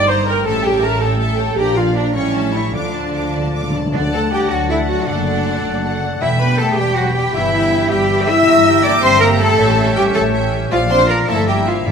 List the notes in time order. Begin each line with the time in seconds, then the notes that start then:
Already playing: G1 G2 G3 A#3 D#4 A#4
0.08 A#4 C5 D#5 A#5 C6
0.26 A#4 D#5 G5 A#5
0.45 A1 A2 G3 C#4 A4 E5 A5
0.64 G3 G4 C#5 G5 A5
0.82 A4 A#4 C#5 E5 A5 A#5
1.00 G3 C#4 G4 A4 C#5 G5 A5
1.19 A4 E5 A5
1.38 G4 C#5 G5 A5
1.57 A#1 A#2 F3 D4 G4 A#4 D5 G5 A#5
1.75 F3 F4 A#4 D5 F5
1.95 D4 A#4 D5 A#5
2.14 A1 A2 G3 C#4 E4 C#5 G5 C#6
2.34 G3 E5 A5
2.54 E4 A4 C#5 E5 G5 C#6
2.73 D2 D3 F3 D4 F4 A4 D5 F5 D6
2.82 D3
2.91 D3 D4 D5 A5
2.99 D3
3.06 D3
3.14 D3 F4 A4 F5 D6
3.22 D3
3.30 D3
3.34 D3 D5 A5
3.46 D3
3.54 D3 A4 F5 A5 D6
3.62 D3
3.70 D3
3.74 D3 D5 A5
3.86 D3
3.94 D2 D3 D4 D5 F#5 A5
4.03 F#3
4.13 A3 D4 A4 F#5 A5
4.22 A4
4.32 G3 F#4 G4 G5
4.41 D5
4.50 D2 F#3 F#4 F#5 A5
4.60 F#5
4.69 E3 A3 E4 A4 E5 F#5 A5
4.79 D5
4.89 F#3 F#4 F#5
4.99 A4
5.07 F#1 F#2 D3 A3 D4 A4 D5 F#5 A5
5.17 D3
5.26 F#3 A3 A4 F#5
5.36 D4
5.46 A4
5.55 F#4
5.64 F#1 D5
5.75 A5
5.83 A3 A4 D5 F#5
5.93 F#4
6.04 A4
6.13 D4
6.21 E1 E2 E3 E4 E5 G5 B5
6.32 B2
6.39 G3 B3 G4 B4 G5 B5
6.50 B3
6.58 A3 A4 B4 A5
6.69 G4
6.78 E1 G3 G4 B4 G5 B5
6.88 B5
6.96 F#3 B3 F#4 G4 B4 F#5 G5
7.06 G4
7.15 G3 G4 B4 G5
7.25 B3
7.34 G1 G2 E3 B3 E4 G4 E5 G5 B5
7.44 E3
7.53 G3 B3 G4 G5
7.62 E4
7.72 B4
7.82 G4
7.90 G1 G3 G4 E5 G5 B5
8.01 B5
8.09 B3 G4 E5 G5
8.19 G4
8.28 E4 B4 E5 E6
8.38 E4
8.47 G1 G2 E5 A#5
8.57 E3
8.66 G3 A#3 G4 G5
8.75 E4
8.83 D4 A#4 D5 D6
8.94 G4
9.02 G1 C4 C5 E5 C6
9.12 A#5
9.20 A#3 G4 A#4 E5 G5 A#5
9.30 G4
9.39 A3 A4 A#4 A5
9.50 E4
9.58 A1 A2 C#4 G4 C#5 E5 G5
9.68 E3
9.77 G3 C#4 G4 E5
9.86 C#4
9.95 G3 G4 A4 G5
10.06 G4
10.14 A1 A3 A4 C#5 A5
10.24 A5
10.33 C#4 G4 C#5 E5
10.43 G4
10.53 A4
10.62 C#4
10.71 A#1 A#2 F3 F4 D5 F5
10.80 F3
10.90 A#3 C4 D4 F4 C5 D5 C6
11.00 F4
11.08 A#3 A#4 D5 A#5
11.19 A#4
11.27 G1 G2 A3 A#3 E4 A4 E5 A5 A#5
11.38 G3
11.47 G3 A#3 E4 G4 E5 G5
11.57 E4
11.67 F3 F4 E5 F5
11.77 A#4
11.86 A1 A2 E4 D5 E5 A5